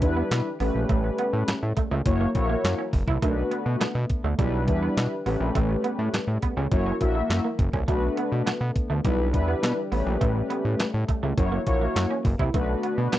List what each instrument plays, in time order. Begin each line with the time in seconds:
Already playing: french horn section D3 E3 G3
0.02 analog synth bass E2, analog polysynth G3 D4 E4 B4, muted clean electric guitar stroke, kick, closed hi-hat
0.17 clean electric guitar B3
0.31 analog synth bass B2, snare, clap, closed hi-hat
0.60 analog synth bass A1, french horn section C#3 G3 A3, analog polysynth A3 C#4 G4 B4, clean electric guitar B3, open hi-hat
0.75 analog synth bass A#1
0.89 analog synth bass A1, clean electric guitar A3, kick, closed hi-hat
1.04 muted clean electric guitar stroke
1.18 clean electric guitar B3, closed hi-hat
1.33 analog synth bass A2
1.48 analog synth bass A2, muted clean electric guitar stroke, snare, clap, closed hi-hat
1.63 analog synth bass A2
1.77 clean electric guitar A3, kick, closed hi-hat
1.91 analog synth bass C#2, clean electric guitar A3
2.06 analog synth bass F#1, french horn section E3 F#3 A#3, analog polysynth A#3 E4 F#4 C#5, kick, closed hi-hat
2.21 clean electric guitar A#3
2.35 analog synth bass A#1, analog polysynth A#3 E4 F#4 C#5, muted clean electric guitar stroke, kick, closed hi-hat
2.49 clean electric guitar A#3
2.64 analog synth bass F#2, snare, clap, closed hi-hat
2.78 clean electric guitar C#4
2.93 analog synth bass F#1, muted clean electric guitar stroke, kick, open hi-hat
3.08 analog synth bass C2, clean electric guitar E4, kick
3.22 analog synth bass B1, french horn section D3 A3 B3, analog polysynth A3 D4 F#4 A#4, clean electric guitar A3, kick, closed hi-hat
3.30 analog polysynth B4
3.51 clean electric guitar B3, closed hi-hat
3.66 analog synth bass B2, muted clean electric guitar stroke
3.80 analog synth bass B2, clean electric guitar B3, snare, clap, closed hi-hat
3.95 analog synth bass B2, muted clean electric guitar stroke
4.10 kick, closed hi-hat
4.24 analog synth bass D2, clean electric guitar A3
4.38 analog synth bass B1, french horn section E3 G3, analog polysynth G3 D4 E4 B4, clean electric guitar G3, kick, closed hi-hat
4.67 analog synth bass E2, analog polysynth G3 D4 E4 B4, muted clean electric guitar stroke, kick, closed hi-hat
4.83 clean electric guitar B3
4.97 analog synth bass B2, snare, clap, closed hi-hat
5.26 analog synth bass A1, french horn section C#3 A3, analog polysynth A3 C#4 G4 B4, clean electric guitar B3, open hi-hat
5.40 analog synth bass A#1
5.55 analog synth bass A1, clean electric guitar A3, kick, closed hi-hat
5.70 muted clean electric guitar stroke
5.84 clean electric guitar B3, closed hi-hat
5.99 analog synth bass A2
6.13 analog synth bass A2, muted clean electric guitar stroke, snare, clap, closed hi-hat
6.27 analog synth bass A2
6.42 clean electric guitar B3, kick, closed hi-hat
6.57 analog synth bass C#2, clean electric guitar C#4
6.72 analog synth bass F#1, french horn section E3 F#3 A#3, analog polysynth A#3 E4 F#4 C#5, kick, closed hi-hat
6.86 clean electric guitar C#4
7.00 analog synth bass A#1, analog polysynth A#3 E4 F#4 E5, muted clean electric guitar stroke, kick, closed hi-hat
7.15 clean electric guitar A3
7.30 analog synth bass F#2, snare, clap, closed hi-hat
7.44 clean electric guitar A#3
7.59 analog synth bass F#1, muted clean electric guitar stroke, kick, closed hi-hat
7.73 analog synth bass C2, clean electric guitar C#4, kick
7.88 analog synth bass B1, french horn section D3 A3 B3, analog polysynth A3 D4 F#4 B4, clean electric guitar A3, kick, closed hi-hat
8.17 clean electric guitar B3, closed hi-hat
8.32 analog synth bass B2, muted clean electric guitar stroke
8.46 analog synth bass B2, clean electric guitar B3, snare, clap, closed hi-hat
8.61 analog synth bass B2, muted clean electric guitar stroke
8.76 kick, closed hi-hat
8.90 analog synth bass D2, clean electric guitar A3
9.04 analog synth bass B1, french horn section E3 G3, analog polysynth G3 D4 E4 B4, clean electric guitar G3, kick, closed hi-hat
9.33 analog synth bass E2, analog polysynth G3 D4 E4 B4, muted clean electric guitar stroke, kick, closed hi-hat
9.48 clean electric guitar B3
9.63 analog synth bass B2, snare, clap, closed hi-hat
9.92 analog synth bass A1, french horn section C#3 A3, analog polysynth A3 C#4 G4 B4, clean electric guitar B3, open hi-hat
10.06 analog synth bass A#1
10.21 analog synth bass A1, clean electric guitar A3, kick, closed hi-hat
10.36 muted clean electric guitar stroke
10.50 clean electric guitar B3, closed hi-hat
10.65 analog synth bass A2
10.79 analog synth bass A2, muted clean electric guitar stroke, snare, clap, closed hi-hat
10.94 analog synth bass A2
11.08 clean electric guitar A3, kick, closed hi-hat
11.23 analog synth bass C#2, clean electric guitar A3
11.37 analog synth bass F#1, french horn section E3 F#3 A#3, analog polysynth A#3 E4 F#4 C#5, kick, closed hi-hat
11.52 clean electric guitar A#3
11.67 analog synth bass A#1, analog polysynth A#3 E4 F#4 C#5, muted clean electric guitar stroke, kick, closed hi-hat
11.81 clean electric guitar A#3
11.96 analog synth bass F#2, snare, clap, closed hi-hat
12.11 clean electric guitar C#4
12.25 analog synth bass F#1, muted clean electric guitar stroke, kick, open hi-hat
12.39 analog synth bass C2, clean electric guitar E4, kick
12.54 analog synth bass B1, french horn section D3 A3 B3, analog polysynth A3 D4 F#4 B4, clean electric guitar A3, kick, closed hi-hat
12.83 clean electric guitar B3, closed hi-hat
12.98 analog synth bass B2, muted clean electric guitar stroke
13.12 analog synth bass B2, clean electric guitar B3, snare, clap, closed hi-hat